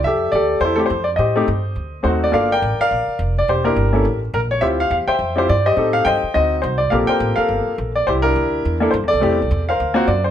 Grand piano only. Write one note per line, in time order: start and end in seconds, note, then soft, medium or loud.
0.04 0.33 G4 medium
0.04 0.34 A4 medium
0.04 0.31 E5 loud
0.32 0.78 G4 medium
0.32 0.63 A4 medium
0.32 0.59 D5 medium
0.61 0.74 A4 medium
0.61 0.78 C5 loud
0.65 0.77 E4 medium
0.76 0.88 A3 medium
0.76 0.88 C4 medium
0.76 0.89 E4 medium
0.76 0.89 G4 medium
0.76 0.81 A4 medium
0.86 1.03 C5 medium
1.04 1.09 D5 medium
1.16 1.36 G4 medium
1.16 2.01 C5 medium
1.16 1.99 D#5 medium
1.35 1.46 A3 medium
1.35 1.46 C4 medium
1.35 1.47 D#4 medium
1.35 1.47 G4 medium
2.03 2.32 A3 medium
2.03 2.33 C4 medium
2.03 2.33 D#4 medium
2.03 2.33 F#4 medium
2.03 2.09 C5 medium
2.24 2.32 D5 medium
2.32 2.48 A#3 medium
2.32 2.48 D4 medium
2.32 2.48 F4 medium
2.32 2.49 A4 medium
2.32 2.51 A#4 medium
2.32 2.50 D5 medium
2.32 2.51 F5 medium
2.52 2.79 A#4 medium
2.52 2.80 D5 medium
2.52 2.81 G5 loud
2.81 3.33 A#4 medium
2.81 3.33 D5 medium
2.81 3.18 F5 loud
3.38 3.48 D5 medium
3.49 3.65 G4 medium
3.49 3.66 C5 medium
3.64 3.75 A#3 medium
3.64 4.03 D4 medium
3.64 3.76 E4 medium
3.64 4.19 G4 medium
3.64 4.18 A#4 loud
3.93 4.04 A#3 medium
3.93 4.04 C#4 medium
3.93 4.04 E4 medium
3.93 4.05 A4 medium
4.34 4.39 A#4 medium
4.51 4.62 C#5 medium
4.61 4.77 C4 medium
4.61 4.78 E4 medium
4.61 4.78 F4 medium
4.61 5.16 G4 medium
4.61 5.07 C5 medium
4.61 4.66 E5 loud
4.80 4.90 F5 loud
4.91 4.96 F5 medium
5.08 5.37 C5 medium
5.08 5.62 E5 medium
5.08 5.38 G5 loud
5.36 5.47 C4 medium
5.36 5.48 E4 medium
5.36 5.48 F4 medium
5.36 5.48 G4 medium
5.36 5.49 C5 medium
5.49 5.67 D5 medium
5.66 5.76 G4 medium
5.66 6.05 C5 medium
5.66 5.93 D#5 medium
5.76 6.19 C4 medium
5.76 6.20 D#4 medium
5.76 6.20 G4 medium
5.76 6.20 A4 medium
5.93 6.06 F5 loud
6.05 6.33 C5 medium
6.05 6.33 D#5 medium
6.05 6.32 G5 loud
6.34 6.77 C4 medium
6.34 6.77 D#4 medium
6.34 6.77 F#4 medium
6.34 6.60 C5 medium
6.34 6.64 D#5 medium
6.62 6.78 C5 medium
6.78 6.90 D5 medium
6.90 7.71 A#3 medium
6.90 7.71 C4 medium
6.90 7.72 F4 medium
6.90 7.72 G4 medium
6.90 7.36 A4 medium
6.90 7.07 A#4 medium
6.90 6.95 F5 medium
7.07 7.37 A#4 medium
7.07 7.63 C5 medium
7.07 7.38 G5 loud
7.36 7.91 A4 medium
7.36 7.91 A#4 medium
7.36 7.74 F5 medium
7.96 8.07 D5 medium
8.07 8.22 E4 medium
8.07 8.61 G4 medium
8.07 8.12 C5 medium
8.22 8.77 D4 medium
8.22 8.77 E4 medium
8.22 8.76 A#4 loud
8.80 8.91 A#3 medium
8.80 8.92 D4 medium
8.80 8.92 E4 medium
8.80 8.92 A4 medium
8.91 8.96 C5 medium
9.08 9.63 A4 medium
9.08 9.62 D5 loud
9.20 9.36 A3 medium
9.20 9.37 C4 medium
9.20 9.37 E4 medium
9.20 9.37 G4 medium
9.69 10.22 A#4 medium
9.69 9.95 C5 medium
9.69 9.95 F5 medium
9.94 10.06 A#3 medium
9.94 10.06 C4 medium
9.94 10.06 F4 medium
9.94 10.06 F#4 medium
9.94 10.08 C5 medium
10.07 10.23 D5 medium
10.24 10.31 C5 medium